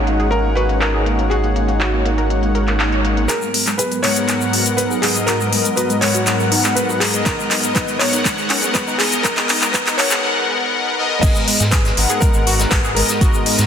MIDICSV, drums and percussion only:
0, 0, Header, 1, 2, 480
1, 0, Start_track
1, 0, Key_signature, 5, "minor"
1, 0, Tempo, 495868
1, 1269, Time_signature, 4, 2, 24, 8
1, 13229, End_track
2, 0, Start_track
2, 0, Title_t, "Drums"
2, 69, Note_on_c, 9, 42, 77
2, 166, Note_off_c, 9, 42, 0
2, 190, Note_on_c, 9, 42, 51
2, 287, Note_off_c, 9, 42, 0
2, 308, Note_on_c, 9, 42, 73
2, 405, Note_off_c, 9, 42, 0
2, 549, Note_on_c, 9, 42, 71
2, 646, Note_off_c, 9, 42, 0
2, 671, Note_on_c, 9, 42, 48
2, 768, Note_off_c, 9, 42, 0
2, 789, Note_on_c, 9, 39, 107
2, 789, Note_on_c, 9, 42, 75
2, 885, Note_off_c, 9, 39, 0
2, 886, Note_off_c, 9, 42, 0
2, 1029, Note_on_c, 9, 42, 72
2, 1126, Note_off_c, 9, 42, 0
2, 1150, Note_on_c, 9, 42, 49
2, 1247, Note_off_c, 9, 42, 0
2, 1269, Note_on_c, 9, 42, 76
2, 1366, Note_off_c, 9, 42, 0
2, 1391, Note_on_c, 9, 42, 35
2, 1488, Note_off_c, 9, 42, 0
2, 1510, Note_on_c, 9, 42, 78
2, 1606, Note_off_c, 9, 42, 0
2, 1631, Note_on_c, 9, 42, 48
2, 1728, Note_off_c, 9, 42, 0
2, 1749, Note_on_c, 9, 39, 111
2, 1749, Note_on_c, 9, 42, 77
2, 1845, Note_off_c, 9, 39, 0
2, 1846, Note_off_c, 9, 42, 0
2, 1989, Note_on_c, 9, 42, 79
2, 2086, Note_off_c, 9, 42, 0
2, 2111, Note_on_c, 9, 42, 50
2, 2207, Note_off_c, 9, 42, 0
2, 2229, Note_on_c, 9, 42, 77
2, 2326, Note_off_c, 9, 42, 0
2, 2350, Note_on_c, 9, 42, 36
2, 2447, Note_off_c, 9, 42, 0
2, 2469, Note_on_c, 9, 42, 73
2, 2565, Note_off_c, 9, 42, 0
2, 2590, Note_on_c, 9, 39, 34
2, 2590, Note_on_c, 9, 42, 51
2, 2687, Note_off_c, 9, 39, 0
2, 2687, Note_off_c, 9, 42, 0
2, 2708, Note_on_c, 9, 39, 113
2, 2709, Note_on_c, 9, 42, 80
2, 2805, Note_off_c, 9, 39, 0
2, 2805, Note_off_c, 9, 42, 0
2, 2830, Note_on_c, 9, 42, 37
2, 2927, Note_off_c, 9, 42, 0
2, 2948, Note_on_c, 9, 42, 76
2, 3045, Note_off_c, 9, 42, 0
2, 3070, Note_on_c, 9, 42, 52
2, 3167, Note_off_c, 9, 42, 0
2, 3186, Note_on_c, 9, 82, 62
2, 3188, Note_on_c, 9, 39, 46
2, 3188, Note_on_c, 9, 42, 76
2, 3283, Note_off_c, 9, 82, 0
2, 3285, Note_off_c, 9, 39, 0
2, 3285, Note_off_c, 9, 42, 0
2, 3307, Note_on_c, 9, 82, 33
2, 3404, Note_off_c, 9, 82, 0
2, 3428, Note_on_c, 9, 46, 101
2, 3525, Note_off_c, 9, 46, 0
2, 3550, Note_on_c, 9, 39, 41
2, 3550, Note_on_c, 9, 42, 49
2, 3552, Note_on_c, 9, 82, 67
2, 3647, Note_off_c, 9, 39, 0
2, 3647, Note_off_c, 9, 42, 0
2, 3648, Note_off_c, 9, 82, 0
2, 3669, Note_on_c, 9, 42, 78
2, 3671, Note_on_c, 9, 82, 64
2, 3765, Note_off_c, 9, 42, 0
2, 3768, Note_off_c, 9, 82, 0
2, 3790, Note_on_c, 9, 42, 34
2, 3794, Note_on_c, 9, 82, 33
2, 3887, Note_off_c, 9, 42, 0
2, 3891, Note_off_c, 9, 82, 0
2, 3908, Note_on_c, 9, 39, 50
2, 3908, Note_on_c, 9, 46, 87
2, 4005, Note_off_c, 9, 39, 0
2, 4005, Note_off_c, 9, 46, 0
2, 4028, Note_on_c, 9, 82, 73
2, 4030, Note_on_c, 9, 42, 53
2, 4124, Note_off_c, 9, 82, 0
2, 4127, Note_off_c, 9, 42, 0
2, 4148, Note_on_c, 9, 39, 48
2, 4148, Note_on_c, 9, 42, 76
2, 4151, Note_on_c, 9, 82, 67
2, 4245, Note_off_c, 9, 39, 0
2, 4245, Note_off_c, 9, 42, 0
2, 4248, Note_off_c, 9, 82, 0
2, 4269, Note_on_c, 9, 82, 37
2, 4366, Note_off_c, 9, 82, 0
2, 4388, Note_on_c, 9, 46, 96
2, 4485, Note_off_c, 9, 46, 0
2, 4508, Note_on_c, 9, 82, 72
2, 4510, Note_on_c, 9, 42, 51
2, 4605, Note_off_c, 9, 82, 0
2, 4607, Note_off_c, 9, 42, 0
2, 4627, Note_on_c, 9, 82, 66
2, 4628, Note_on_c, 9, 42, 78
2, 4724, Note_off_c, 9, 82, 0
2, 4725, Note_off_c, 9, 42, 0
2, 4750, Note_on_c, 9, 82, 40
2, 4847, Note_off_c, 9, 82, 0
2, 4869, Note_on_c, 9, 39, 52
2, 4869, Note_on_c, 9, 46, 86
2, 4966, Note_off_c, 9, 39, 0
2, 4966, Note_off_c, 9, 46, 0
2, 4991, Note_on_c, 9, 42, 52
2, 4994, Note_on_c, 9, 82, 73
2, 5087, Note_off_c, 9, 42, 0
2, 5091, Note_off_c, 9, 82, 0
2, 5109, Note_on_c, 9, 39, 56
2, 5109, Note_on_c, 9, 42, 76
2, 5109, Note_on_c, 9, 82, 58
2, 5206, Note_off_c, 9, 39, 0
2, 5206, Note_off_c, 9, 42, 0
2, 5206, Note_off_c, 9, 82, 0
2, 5232, Note_on_c, 9, 82, 36
2, 5328, Note_off_c, 9, 82, 0
2, 5348, Note_on_c, 9, 46, 106
2, 5445, Note_off_c, 9, 46, 0
2, 5471, Note_on_c, 9, 42, 49
2, 5472, Note_on_c, 9, 82, 70
2, 5568, Note_off_c, 9, 42, 0
2, 5569, Note_off_c, 9, 82, 0
2, 5588, Note_on_c, 9, 82, 66
2, 5589, Note_on_c, 9, 42, 77
2, 5685, Note_off_c, 9, 82, 0
2, 5686, Note_off_c, 9, 42, 0
2, 5710, Note_on_c, 9, 82, 40
2, 5711, Note_on_c, 9, 42, 34
2, 5807, Note_off_c, 9, 42, 0
2, 5807, Note_off_c, 9, 82, 0
2, 5829, Note_on_c, 9, 39, 64
2, 5829, Note_on_c, 9, 46, 94
2, 5926, Note_off_c, 9, 39, 0
2, 5926, Note_off_c, 9, 46, 0
2, 5951, Note_on_c, 9, 42, 53
2, 5952, Note_on_c, 9, 82, 74
2, 6047, Note_off_c, 9, 42, 0
2, 6048, Note_off_c, 9, 82, 0
2, 6067, Note_on_c, 9, 82, 72
2, 6069, Note_on_c, 9, 39, 65
2, 6069, Note_on_c, 9, 42, 73
2, 6164, Note_off_c, 9, 82, 0
2, 6166, Note_off_c, 9, 39, 0
2, 6166, Note_off_c, 9, 42, 0
2, 6190, Note_on_c, 9, 82, 39
2, 6287, Note_off_c, 9, 82, 0
2, 6309, Note_on_c, 9, 46, 105
2, 6406, Note_off_c, 9, 46, 0
2, 6430, Note_on_c, 9, 82, 79
2, 6431, Note_on_c, 9, 39, 58
2, 6431, Note_on_c, 9, 42, 52
2, 6527, Note_off_c, 9, 39, 0
2, 6527, Note_off_c, 9, 42, 0
2, 6527, Note_off_c, 9, 82, 0
2, 6549, Note_on_c, 9, 42, 74
2, 6552, Note_on_c, 9, 82, 71
2, 6646, Note_off_c, 9, 42, 0
2, 6649, Note_off_c, 9, 82, 0
2, 6673, Note_on_c, 9, 82, 41
2, 6770, Note_off_c, 9, 82, 0
2, 6789, Note_on_c, 9, 39, 68
2, 6789, Note_on_c, 9, 46, 92
2, 6885, Note_off_c, 9, 39, 0
2, 6885, Note_off_c, 9, 46, 0
2, 6910, Note_on_c, 9, 42, 53
2, 6910, Note_on_c, 9, 82, 72
2, 7007, Note_off_c, 9, 42, 0
2, 7007, Note_off_c, 9, 82, 0
2, 7028, Note_on_c, 9, 36, 119
2, 7029, Note_on_c, 9, 39, 70
2, 7029, Note_on_c, 9, 42, 74
2, 7029, Note_on_c, 9, 82, 61
2, 7125, Note_off_c, 9, 36, 0
2, 7125, Note_off_c, 9, 39, 0
2, 7125, Note_off_c, 9, 42, 0
2, 7126, Note_off_c, 9, 82, 0
2, 7159, Note_on_c, 9, 82, 39
2, 7255, Note_off_c, 9, 82, 0
2, 7269, Note_on_c, 9, 39, 78
2, 7269, Note_on_c, 9, 46, 112
2, 7366, Note_off_c, 9, 39, 0
2, 7366, Note_off_c, 9, 46, 0
2, 7390, Note_on_c, 9, 42, 50
2, 7393, Note_on_c, 9, 82, 75
2, 7487, Note_off_c, 9, 42, 0
2, 7490, Note_off_c, 9, 82, 0
2, 7507, Note_on_c, 9, 82, 67
2, 7508, Note_on_c, 9, 36, 124
2, 7509, Note_on_c, 9, 39, 75
2, 7509, Note_on_c, 9, 42, 76
2, 7604, Note_off_c, 9, 82, 0
2, 7605, Note_off_c, 9, 36, 0
2, 7606, Note_off_c, 9, 39, 0
2, 7606, Note_off_c, 9, 42, 0
2, 7628, Note_on_c, 9, 82, 37
2, 7630, Note_on_c, 9, 42, 35
2, 7725, Note_off_c, 9, 82, 0
2, 7727, Note_off_c, 9, 42, 0
2, 7748, Note_on_c, 9, 39, 82
2, 7748, Note_on_c, 9, 46, 96
2, 7845, Note_off_c, 9, 39, 0
2, 7845, Note_off_c, 9, 46, 0
2, 7870, Note_on_c, 9, 42, 51
2, 7872, Note_on_c, 9, 82, 88
2, 7967, Note_off_c, 9, 42, 0
2, 7969, Note_off_c, 9, 82, 0
2, 7988, Note_on_c, 9, 36, 119
2, 7988, Note_on_c, 9, 39, 77
2, 7988, Note_on_c, 9, 42, 73
2, 7995, Note_on_c, 9, 82, 71
2, 8085, Note_off_c, 9, 36, 0
2, 8085, Note_off_c, 9, 39, 0
2, 8085, Note_off_c, 9, 42, 0
2, 8091, Note_off_c, 9, 82, 0
2, 8109, Note_on_c, 9, 82, 42
2, 8206, Note_off_c, 9, 82, 0
2, 8228, Note_on_c, 9, 39, 81
2, 8228, Note_on_c, 9, 46, 110
2, 8325, Note_off_c, 9, 39, 0
2, 8325, Note_off_c, 9, 46, 0
2, 8350, Note_on_c, 9, 42, 52
2, 8355, Note_on_c, 9, 82, 82
2, 8447, Note_off_c, 9, 42, 0
2, 8452, Note_off_c, 9, 82, 0
2, 8468, Note_on_c, 9, 36, 120
2, 8468, Note_on_c, 9, 39, 86
2, 8468, Note_on_c, 9, 42, 78
2, 8468, Note_on_c, 9, 82, 66
2, 8565, Note_off_c, 9, 36, 0
2, 8565, Note_off_c, 9, 39, 0
2, 8565, Note_off_c, 9, 42, 0
2, 8565, Note_off_c, 9, 82, 0
2, 8591, Note_on_c, 9, 82, 42
2, 8688, Note_off_c, 9, 82, 0
2, 8708, Note_on_c, 9, 39, 87
2, 8708, Note_on_c, 9, 46, 99
2, 8805, Note_off_c, 9, 39, 0
2, 8805, Note_off_c, 9, 46, 0
2, 8830, Note_on_c, 9, 42, 50
2, 8832, Note_on_c, 9, 82, 82
2, 8926, Note_off_c, 9, 42, 0
2, 8929, Note_off_c, 9, 82, 0
2, 8948, Note_on_c, 9, 36, 126
2, 8948, Note_on_c, 9, 39, 90
2, 8948, Note_on_c, 9, 42, 73
2, 8950, Note_on_c, 9, 82, 66
2, 9045, Note_off_c, 9, 36, 0
2, 9045, Note_off_c, 9, 39, 0
2, 9045, Note_off_c, 9, 42, 0
2, 9047, Note_off_c, 9, 82, 0
2, 9065, Note_on_c, 9, 82, 40
2, 9070, Note_on_c, 9, 39, 83
2, 9162, Note_off_c, 9, 82, 0
2, 9167, Note_off_c, 9, 39, 0
2, 9188, Note_on_c, 9, 39, 96
2, 9188, Note_on_c, 9, 46, 115
2, 9284, Note_off_c, 9, 39, 0
2, 9284, Note_off_c, 9, 46, 0
2, 9310, Note_on_c, 9, 39, 81
2, 9310, Note_on_c, 9, 42, 49
2, 9314, Note_on_c, 9, 82, 77
2, 9406, Note_off_c, 9, 39, 0
2, 9406, Note_off_c, 9, 42, 0
2, 9411, Note_off_c, 9, 82, 0
2, 9428, Note_on_c, 9, 36, 126
2, 9428, Note_on_c, 9, 39, 95
2, 9428, Note_on_c, 9, 42, 75
2, 9435, Note_on_c, 9, 82, 73
2, 9525, Note_off_c, 9, 36, 0
2, 9525, Note_off_c, 9, 39, 0
2, 9525, Note_off_c, 9, 42, 0
2, 9531, Note_off_c, 9, 82, 0
2, 9550, Note_on_c, 9, 39, 82
2, 9550, Note_on_c, 9, 42, 35
2, 9555, Note_on_c, 9, 82, 42
2, 9647, Note_off_c, 9, 39, 0
2, 9647, Note_off_c, 9, 42, 0
2, 9652, Note_off_c, 9, 82, 0
2, 9668, Note_on_c, 9, 39, 99
2, 9668, Note_on_c, 9, 46, 97
2, 9765, Note_off_c, 9, 39, 0
2, 9765, Note_off_c, 9, 46, 0
2, 9780, Note_on_c, 9, 82, 85
2, 9790, Note_on_c, 9, 39, 91
2, 9877, Note_off_c, 9, 82, 0
2, 9887, Note_off_c, 9, 39, 0
2, 10869, Note_on_c, 9, 36, 119
2, 10869, Note_on_c, 9, 42, 83
2, 10869, Note_on_c, 9, 49, 99
2, 10870, Note_on_c, 9, 82, 62
2, 10871, Note_off_c, 9, 42, 0
2, 10871, Note_on_c, 9, 42, 82
2, 10966, Note_off_c, 9, 36, 0
2, 10966, Note_off_c, 9, 49, 0
2, 10967, Note_off_c, 9, 82, 0
2, 10968, Note_off_c, 9, 42, 0
2, 10986, Note_on_c, 9, 82, 40
2, 11083, Note_off_c, 9, 82, 0
2, 11106, Note_on_c, 9, 42, 71
2, 11109, Note_on_c, 9, 46, 105
2, 11203, Note_off_c, 9, 42, 0
2, 11206, Note_off_c, 9, 46, 0
2, 11228, Note_on_c, 9, 82, 77
2, 11231, Note_on_c, 9, 42, 54
2, 11233, Note_on_c, 9, 38, 45
2, 11325, Note_off_c, 9, 82, 0
2, 11328, Note_off_c, 9, 42, 0
2, 11330, Note_off_c, 9, 38, 0
2, 11342, Note_on_c, 9, 42, 87
2, 11347, Note_on_c, 9, 38, 104
2, 11347, Note_on_c, 9, 82, 71
2, 11349, Note_off_c, 9, 42, 0
2, 11349, Note_on_c, 9, 36, 125
2, 11349, Note_on_c, 9, 39, 127
2, 11349, Note_on_c, 9, 42, 83
2, 11443, Note_off_c, 9, 82, 0
2, 11444, Note_off_c, 9, 38, 0
2, 11446, Note_off_c, 9, 36, 0
2, 11446, Note_off_c, 9, 39, 0
2, 11446, Note_off_c, 9, 42, 0
2, 11471, Note_on_c, 9, 42, 37
2, 11472, Note_on_c, 9, 82, 35
2, 11476, Note_on_c, 9, 38, 46
2, 11567, Note_off_c, 9, 42, 0
2, 11569, Note_off_c, 9, 82, 0
2, 11572, Note_off_c, 9, 38, 0
2, 11589, Note_on_c, 9, 42, 74
2, 11589, Note_on_c, 9, 46, 106
2, 11686, Note_off_c, 9, 42, 0
2, 11686, Note_off_c, 9, 46, 0
2, 11709, Note_on_c, 9, 82, 81
2, 11711, Note_on_c, 9, 42, 56
2, 11805, Note_off_c, 9, 82, 0
2, 11807, Note_off_c, 9, 42, 0
2, 11825, Note_on_c, 9, 82, 63
2, 11829, Note_on_c, 9, 36, 121
2, 11830, Note_on_c, 9, 42, 82
2, 11834, Note_off_c, 9, 42, 0
2, 11834, Note_on_c, 9, 42, 88
2, 11922, Note_off_c, 9, 82, 0
2, 11926, Note_off_c, 9, 36, 0
2, 11931, Note_off_c, 9, 42, 0
2, 11942, Note_on_c, 9, 82, 42
2, 11948, Note_on_c, 9, 42, 39
2, 12039, Note_off_c, 9, 82, 0
2, 12045, Note_off_c, 9, 42, 0
2, 12070, Note_on_c, 9, 46, 102
2, 12075, Note_on_c, 9, 42, 63
2, 12166, Note_off_c, 9, 46, 0
2, 12172, Note_off_c, 9, 42, 0
2, 12190, Note_on_c, 9, 38, 41
2, 12191, Note_on_c, 9, 42, 54
2, 12194, Note_on_c, 9, 82, 76
2, 12287, Note_off_c, 9, 38, 0
2, 12288, Note_off_c, 9, 42, 0
2, 12291, Note_off_c, 9, 82, 0
2, 12302, Note_on_c, 9, 42, 93
2, 12306, Note_on_c, 9, 82, 61
2, 12307, Note_on_c, 9, 38, 102
2, 12309, Note_on_c, 9, 36, 112
2, 12309, Note_on_c, 9, 39, 124
2, 12310, Note_off_c, 9, 42, 0
2, 12310, Note_on_c, 9, 42, 84
2, 12403, Note_off_c, 9, 38, 0
2, 12403, Note_off_c, 9, 82, 0
2, 12406, Note_off_c, 9, 36, 0
2, 12406, Note_off_c, 9, 39, 0
2, 12407, Note_off_c, 9, 42, 0
2, 12429, Note_on_c, 9, 82, 37
2, 12526, Note_off_c, 9, 82, 0
2, 12548, Note_on_c, 9, 42, 74
2, 12550, Note_on_c, 9, 46, 106
2, 12645, Note_off_c, 9, 42, 0
2, 12647, Note_off_c, 9, 46, 0
2, 12665, Note_on_c, 9, 38, 40
2, 12670, Note_on_c, 9, 82, 87
2, 12671, Note_on_c, 9, 42, 54
2, 12762, Note_off_c, 9, 38, 0
2, 12767, Note_off_c, 9, 82, 0
2, 12768, Note_off_c, 9, 42, 0
2, 12789, Note_on_c, 9, 36, 123
2, 12789, Note_on_c, 9, 42, 81
2, 12791, Note_off_c, 9, 42, 0
2, 12791, Note_on_c, 9, 42, 91
2, 12797, Note_on_c, 9, 82, 63
2, 12886, Note_off_c, 9, 36, 0
2, 12888, Note_off_c, 9, 42, 0
2, 12893, Note_off_c, 9, 82, 0
2, 12909, Note_on_c, 9, 82, 39
2, 13005, Note_off_c, 9, 82, 0
2, 13028, Note_on_c, 9, 46, 84
2, 13030, Note_off_c, 9, 46, 0
2, 13030, Note_on_c, 9, 46, 113
2, 13127, Note_off_c, 9, 46, 0
2, 13148, Note_on_c, 9, 38, 54
2, 13150, Note_on_c, 9, 82, 78
2, 13152, Note_on_c, 9, 42, 54
2, 13229, Note_off_c, 9, 38, 0
2, 13229, Note_off_c, 9, 42, 0
2, 13229, Note_off_c, 9, 82, 0
2, 13229, End_track
0, 0, End_of_file